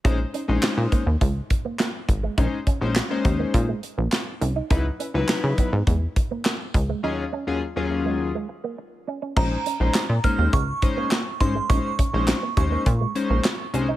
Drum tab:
CC |--------|--------|--------|--------|
HH |xxxxxxxx|xxxxxxxx|xxxxxxxx|--------|
CP |--x---x-|--x---x-|--x---x-|--------|
SD |--o---o-|--o---o-|--o---o-|--------|
BD |o--ooo-o|oo-oo---|o--ooo-o|--------|

CC |x-------|--------|
HH |-xxxxxxx|xxxxxxxx|
CP |--x---x-|--x---x-|
SD |--o---o-|--o---o-|
BD |o--ooo-o|oo-oo---|